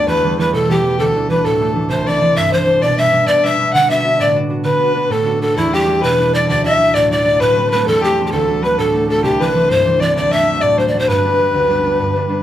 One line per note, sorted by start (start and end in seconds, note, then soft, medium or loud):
0.00 0.13 D2 medium
0.00 0.13 G3 medium
0.00 1.15 A3 soft
0.00 0.24 B3 soft
0.00 1.16 D4 medium
0.07 1.04 E2 medium
0.07 0.39 B4 medium
0.07 0.37 B4 medium
0.24 0.37 E3 medium
0.24 0.38 G3 soft
0.24 0.39 B3 medium
0.38 0.59 E3 medium
0.38 0.68 G3 medium
0.38 0.69 B3 medium
0.38 0.53 B4 medium
0.38 0.54 B4 medium
0.53 1.04 B2 medium
0.53 0.72 A4 medium
0.53 0.73 A4 medium
0.69 0.82 E3 medium
0.69 0.82 G3 soft
0.69 0.83 B3 medium
0.69 1.01 G4 medium
0.69 1.03 G4 medium
0.83 1.04 E3 soft
0.83 1.04 G3 soft
0.83 1.96 B3 soft
0.99 1.95 D2 medium
0.99 1.29 A4 medium
0.99 1.31 A4 medium
1.15 1.29 E3 soft
1.15 1.30 A3 soft
1.15 1.31 D4 soft
1.30 1.60 E3 medium
1.30 1.61 A3 soft
1.30 1.61 D4 soft
1.30 1.47 B4 medium
1.30 1.46 B4 medium
1.45 1.95 A2 medium
1.45 1.90 A4 medium
1.45 1.70 A4 medium
1.61 1.74 E3 soft
1.61 1.75 A3 soft
1.61 1.75 D4 soft
1.75 1.95 E3 soft
1.75 5.08 A3 soft
1.75 2.07 D4 medium
1.90 2.87 C2 medium
1.90 2.08 C5 medium
1.90 2.08 C5 loud
2.06 2.20 E3 soft
2.06 2.21 C4 medium
2.06 2.21 D4 medium
2.06 2.38 D5 medium
2.06 2.38 D5 loud
2.21 2.51 E3 medium
2.21 2.52 C4 soft
2.21 2.53 D4 medium
2.36 2.87 G2 medium
2.36 2.55 E5 medium
2.36 2.51 E5 medium
2.52 2.65 E3 medium
2.52 2.66 C4 soft
2.52 2.66 D4 medium
2.52 2.83 C5 medium
2.52 2.82 C5 loud
2.66 2.87 E3 soft
2.66 2.87 C4 soft
2.66 2.97 D4 medium
2.81 3.27 B2 medium
2.81 3.00 D5 medium
2.81 2.99 D5 medium
2.97 3.11 G3 soft
2.97 3.13 B3 soft
2.97 3.13 D4 soft
2.97 3.29 E5 loud
2.97 3.28 E5 medium
3.12 3.42 G3 soft
3.12 3.44 B3 soft
3.12 3.44 D4 medium
3.27 3.78 B2 medium
3.27 3.44 D5 medium
3.27 3.46 D5 medium
3.43 3.57 G3 soft
3.43 3.58 B3 soft
3.43 3.59 D4 medium
3.43 3.73 E5 medium
3.43 3.76 E5 medium
3.58 3.78 G3 medium
3.58 3.89 B3 soft
3.58 3.90 D4 medium
3.74 4.24 D3 medium
3.74 3.89 F#5 medium
3.74 3.92 F#5 loud
3.90 4.03 B3 medium
3.90 4.03 D4 soft
3.90 4.04 F#4 medium
3.90 4.22 E5 medium
4.03 4.35 B3 soft
4.03 4.35 D4 soft
4.03 4.36 F#4 medium
4.19 4.70 A2 medium
4.19 4.36 D5 loud
4.19 4.36 D5 medium
4.35 4.49 B3 soft
4.35 4.50 D4 soft
4.35 4.50 F#4 medium
4.49 4.77 B3 soft
4.49 4.80 D4 soft
4.49 4.83 F#4 medium
4.64 5.16 D3 medium
4.64 5.13 B4 medium
4.77 4.95 B3 soft
4.77 4.95 D4 soft
4.83 4.96 F#4 soft
4.95 5.25 B3 soft
4.95 5.26 D4 soft
4.95 5.26 F#4 medium
5.09 5.62 A2 medium
5.09 5.41 A4 medium
5.09 5.42 A4 medium
5.25 5.41 B3 soft
5.25 5.41 D4 soft
5.25 5.42 F#4 medium
5.41 7.63 B3 soft
5.41 5.73 D4 soft
5.41 5.79 F#4 medium
5.41 5.59 A4 medium
5.57 6.53 E2 medium
5.57 5.75 E4 medium
5.73 5.86 G3 soft
5.73 5.87 D4 soft
5.73 5.88 E4 medium
5.73 6.03 G4 medium
5.73 6.05 G4 medium
5.87 6.18 G3 medium
5.87 6.20 D4 soft
5.87 6.20 E4 medium
6.02 6.53 B2 medium
6.02 6.33 B4 medium
6.02 6.36 B4 loud
6.19 6.33 G3 soft
6.19 6.34 D4 soft
6.19 6.34 E4 medium
6.34 6.53 G3 soft
6.34 6.64 D4 soft
6.34 6.64 E4 medium
6.34 6.49 D5 medium
6.34 6.48 D5 medium
6.48 7.45 D2 medium
6.48 6.64 D5 medium
6.64 6.77 F#3 soft
6.64 6.79 D4 soft
6.64 6.79 E4 medium
6.64 6.95 E5 medium
6.64 6.97 E5 loud
6.79 7.09 F#3 soft
6.79 7.10 D4 soft
6.79 7.11 E4 medium
6.94 7.39 A2 medium
6.94 7.09 D5 medium
6.94 7.11 D5 loud
7.10 7.23 F#3 soft
7.10 7.24 D4 soft
7.10 7.25 E4 medium
7.10 7.42 D5 medium
7.10 7.43 D5 loud
7.24 7.45 F#3 medium
7.24 8.48 D4 soft
7.24 9.87 E4 medium
7.40 7.91 A2 medium
7.40 7.70 B4 medium
7.40 7.71 B4 medium
7.55 7.68 G3 soft
7.55 7.71 A3 soft
7.55 7.74 C4 medium
7.68 8.00 G3 soft
7.68 8.02 A3 soft
7.68 7.85 B4 medium
7.68 7.89 B4 medium
7.74 8.04 C4 medium
7.86 8.37 E2 medium
7.86 8.04 A4 medium
7.86 8.06 A4 medium
8.00 8.17 G3 soft
8.00 8.18 A3 soft
8.00 8.25 G4 medium
8.04 8.18 C4 soft
8.04 8.27 G4 medium
8.18 8.37 G3 medium
8.18 8.47 A3 soft
8.18 9.40 C4 medium
8.27 8.33 G4 medium
8.32 9.29 D2 medium
8.32 8.65 A4 medium
8.47 8.60 F#3 soft
8.47 8.62 A3 soft
8.47 8.62 D4 soft
8.62 8.92 F#3 soft
8.62 8.93 A3 soft
8.62 8.93 D4 medium
8.62 8.80 B4 medium
8.62 8.78 B4 medium
8.78 9.29 A2 medium
8.78 9.09 A4 medium
8.78 9.07 A4 medium
8.93 9.07 F#3 soft
8.93 9.08 A3 soft
8.93 9.09 D4 medium
9.08 9.29 F#3 medium
9.08 10.31 A3 soft
9.08 9.40 D4 medium
9.08 9.23 A4 medium
9.08 9.26 A4 medium
9.23 10.21 C2 medium
9.23 9.43 G4 loud
9.23 9.41 G4 medium
9.39 9.53 E3 medium
9.39 9.54 C4 soft
9.39 9.55 D4 medium
9.39 9.70 B4 medium
9.39 9.72 B4 medium
9.54 9.84 E3 medium
9.54 9.85 C4 soft
9.54 9.86 D4 medium
9.69 10.21 G2 medium
9.69 10.01 C5 medium
9.69 10.03 C5 loud
9.85 9.99 E3 medium
9.85 10.00 C4 soft
9.85 10.00 D4 medium
10.00 10.21 E3 soft
10.00 11.31 C4 soft
10.00 10.34 D4 medium
10.00 10.14 D5 medium
10.00 10.16 D5 medium
10.15 11.13 D2 medium
10.15 10.33 D5 medium
10.15 10.34 D5 medium
10.28 10.44 F#3 soft
10.28 10.47 A3 soft
10.28 10.63 E5 medium
10.34 10.50 D4 soft
10.45 10.77 F#3 soft
10.45 10.78 A3 soft
10.50 10.79 D4 soft
10.61 11.13 A2 medium
10.61 10.81 D5 medium
10.61 10.79 D5 medium
10.78 10.92 F#3 soft
10.78 10.93 A3 soft
10.78 10.94 D4 soft
10.78 10.88 C5 medium
10.78 10.89 C5 medium
10.88 11.01 D5 medium
10.93 11.13 F#3 medium
10.93 12.43 A3 soft
10.93 11.25 D4 medium
10.98 11.10 C5 medium
10.98 11.08 C5 medium
11.07 11.58 G2 medium
11.07 12.43 B4 medium
11.24 11.37 G3 medium
11.24 11.39 B3 soft
11.24 11.39 D4 medium
11.39 11.69 G3 soft
11.39 11.70 B3 soft
11.39 11.70 D4 medium
11.53 12.04 D2 medium
11.69 11.82 G3 soft
11.69 11.83 B3 soft
11.69 11.84 D4 soft
11.83 12.14 G3 soft
11.83 12.16 B3 soft
11.83 12.16 D4 medium
12.00 12.43 G2 medium
12.15 12.28 G3 soft
12.15 12.29 B3 soft
12.15 12.29 D4 soft
12.29 12.43 G3 soft
12.29 12.43 B3 soft
12.29 12.43 D4 medium